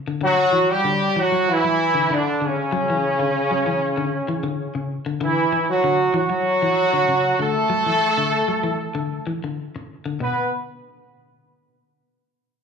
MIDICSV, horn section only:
0, 0, Header, 1, 2, 480
1, 0, Start_track
1, 0, Key_signature, 2, "minor"
1, 0, Tempo, 623506
1, 174, Time_signature, 4, 2, 24, 8
1, 9725, End_track
2, 0, Start_track
2, 0, Title_t, "Horn section"
2, 0, Program_c, 0, 61
2, 183, Note_on_c, 0, 54, 116
2, 183, Note_on_c, 0, 66, 126
2, 516, Note_off_c, 0, 54, 0
2, 516, Note_off_c, 0, 66, 0
2, 539, Note_on_c, 0, 55, 110
2, 539, Note_on_c, 0, 67, 119
2, 895, Note_off_c, 0, 55, 0
2, 895, Note_off_c, 0, 67, 0
2, 912, Note_on_c, 0, 54, 100
2, 912, Note_on_c, 0, 66, 109
2, 1143, Note_off_c, 0, 54, 0
2, 1143, Note_off_c, 0, 66, 0
2, 1160, Note_on_c, 0, 52, 107
2, 1160, Note_on_c, 0, 64, 116
2, 1627, Note_off_c, 0, 52, 0
2, 1627, Note_off_c, 0, 64, 0
2, 1630, Note_on_c, 0, 50, 91
2, 1630, Note_on_c, 0, 62, 99
2, 1862, Note_off_c, 0, 50, 0
2, 1862, Note_off_c, 0, 62, 0
2, 1883, Note_on_c, 0, 49, 87
2, 1883, Note_on_c, 0, 61, 94
2, 3788, Note_off_c, 0, 49, 0
2, 3788, Note_off_c, 0, 61, 0
2, 4006, Note_on_c, 0, 52, 91
2, 4006, Note_on_c, 0, 64, 99
2, 4347, Note_off_c, 0, 52, 0
2, 4347, Note_off_c, 0, 64, 0
2, 4378, Note_on_c, 0, 54, 88
2, 4378, Note_on_c, 0, 66, 96
2, 4709, Note_off_c, 0, 54, 0
2, 4709, Note_off_c, 0, 66, 0
2, 4740, Note_on_c, 0, 54, 100
2, 4740, Note_on_c, 0, 66, 109
2, 5666, Note_off_c, 0, 54, 0
2, 5666, Note_off_c, 0, 66, 0
2, 5696, Note_on_c, 0, 57, 104
2, 5696, Note_on_c, 0, 69, 113
2, 7135, Note_off_c, 0, 57, 0
2, 7135, Note_off_c, 0, 69, 0
2, 7866, Note_on_c, 0, 59, 84
2, 7866, Note_on_c, 0, 71, 92
2, 8084, Note_off_c, 0, 59, 0
2, 8084, Note_off_c, 0, 71, 0
2, 9725, End_track
0, 0, End_of_file